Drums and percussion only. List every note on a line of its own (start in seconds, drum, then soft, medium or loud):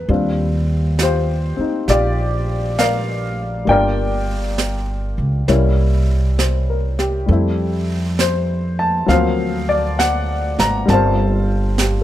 0.09 brush sweep soft
0.99 snare soft
0.99 hi-hat pedal soft
1.88 brush sweep soft
1.88 snare soft
2.79 snare soft
2.79 hi-hat pedal soft
3.68 brush sweep soft
4.58 snare soft
4.58 hi-hat pedal soft
5.48 brush sweep soft
5.48 snare soft
6.39 snare soft
6.39 hi-hat pedal soft
6.99 snare soft
7.29 brush sweep soft
8.19 snare soft
8.19 hi-hat pedal soft
9.09 brush sweep soft
9.09 snare soft
9.99 snare soft
9.99 hi-hat pedal soft
10.59 snare soft
10.88 brush sweep soft
10.88 snare soft
11.78 snare soft
11.78 hi-hat pedal soft